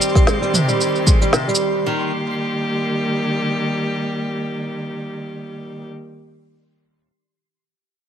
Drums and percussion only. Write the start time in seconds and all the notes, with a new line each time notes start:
0.02 shaker
0.09 shaker
0.15 kick, snare, shaker
0.27 snare, shaker
0.43 shaker
0.54 mid tom, shaker
0.69 shaker
0.81 shaker
0.95 shaker
1.07 kick, shaker
1.22 shaker
1.33 snare, shaker
1.49 shaker
1.55 shaker